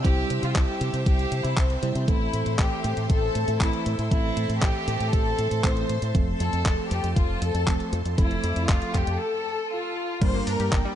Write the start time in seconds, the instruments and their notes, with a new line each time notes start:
Already playing: string machine C5 E5 E6
0.05 fingered electric bass C2, tine electric piano G3 C4 E4 C5, violin section G4, string machine A5, kick, closed hi-hat
0.30 fingered electric bass C3, closed hi-hat
0.43 fingered electric bass C3, violin section F4, closed hi-hat
0.55 fingered electric bass C2, violin section G4, kick, clap, closed hi-hat
0.81 fingered electric bass C3, closed hi-hat
0.93 fingered electric bass C3, closed hi-hat
1.06 fingered electric bass C2, violin section G4, kick, closed hi-hat
1.19 closed hi-hat
1.32 fingered electric bass C3, closed hi-hat
1.44 fingered electric bass C3, violin section E4, closed hi-hat
1.57 fingered electric bass C2, violin section C4, kick, clap, closed hi-hat
1.70 closed hi-hat
1.83 fingered electric bass C3, tine electric piano G3 C4 E4 C5, closed hi-hat
1.95 fingered electric bass C3, closed hi-hat
2.08 fingered electric bass A1, tine electric piano E3 A3 C4 A4, violin section E4, string machine A4 C6, kick, closed hi-hat
2.33 fingered electric bass A2, closed hi-hat
2.46 fingered electric bass A2, closed hi-hat
2.59 fingered electric bass A1, violin section G4, kick, clap, closed hi-hat
2.84 fingered electric bass A2, closed hi-hat
2.97 fingered electric bass A2, closed hi-hat
3.10 fingered electric bass A1, violin section A4, kick, closed hi-hat
3.35 fingered electric bass A2, closed hi-hat
3.48 fingered electric bass A2, closed hi-hat
3.61 fingered electric bass A1, tine electric piano E3 A3 C4 A4, violin section E4, kick, clap, closed hi-hat
3.73 closed hi-hat
3.86 fingered electric bass A2, closed hi-hat
3.99 fingered electric bass A2, closed hi-hat
4.11 fingered electric bass A1, tine electric piano E3 A3 C4 A4, violin section E4, kick, closed hi-hat
4.37 fingered electric bass A2, closed hi-hat
4.49 fingered electric bass A2, closed hi-hat
4.62 fingered electric bass A1, violin section G4, kick, clap, closed hi-hat
4.88 fingered electric bass A2, closed hi-hat
5.00 fingered electric bass A2, closed hi-hat
5.13 fingered electric bass A1, violin section A4, kick, closed hi-hat
5.39 fingered electric bass A2, closed hi-hat
5.51 fingered electric bass A2, closed hi-hat
5.64 fingered electric bass A1, tine electric piano E3 A3 C4 A4, violin section C5, kick, clap, closed hi-hat
5.77 closed hi-hat
5.89 fingered electric bass A2, closed hi-hat
6.02 fingered electric bass A2, closed hi-hat
6.15 fingered electric bass F1, tine electric piano F3 A3 C4 A4, string machine A5, kick, closed hi-hat
6.40 fingered electric bass F2, violin section A4, closed hi-hat
6.53 fingered electric bass F2, closed hi-hat
6.66 fingered electric bass F1, kick, clap, closed hi-hat
6.91 fingered electric bass F2, violin section G4, closed hi-hat
7.04 fingered electric bass F2, closed hi-hat
7.16 fingered electric bass F1, violin section F4, kick, closed hi-hat
7.42 fingered electric bass F2, violin section A4, closed hi-hat
7.54 fingered electric bass F2, closed hi-hat
7.67 fingered electric bass F1, tine electric piano F3 A3 C4 A4, kick, clap, closed hi-hat
7.80 closed hi-hat
7.93 fingered electric bass F2, closed hi-hat
8.05 fingered electric bass F2, closed hi-hat
8.18 fingered electric bass F1, tine electric piano F3 A3 C4 A4, violin section E4, string machine D6, kick, closed hi-hat
8.31 closed hi-hat
8.43 fingered electric bass F2, closed hi-hat
8.56 fingered electric bass F2, closed hi-hat
8.69 fingered electric bass F1, violin section F4, kick, clap, closed hi-hat
8.82 closed hi-hat
8.94 fingered electric bass F2, violin section G4, kick, clap, closed hi-hat
9.07 fingered electric bass F2, closed hi-hat
9.20 violin section A4
9.71 violin section F4 F5
10.21 fingered electric bass G1, synth arpeggio sound G3, tine electric piano G3 A#3 D4 A#4, string machine A#4 D5 G5 D6, violin section C5 C6, kick, closed hi-hat, crash
10.34 synth arpeggio sound A#3
10.47 fingered electric bass G2, synth arpeggio sound D4, violin section A#4 A#5, open hi-hat
10.60 fingered electric bass G2, synth arpeggio sound G4, closed hi-hat
10.72 fingered electric bass G1, violin section G4 G5, synth arpeggio sound A#4, kick, clap, closed hi-hat
10.85 synth arpeggio sound G3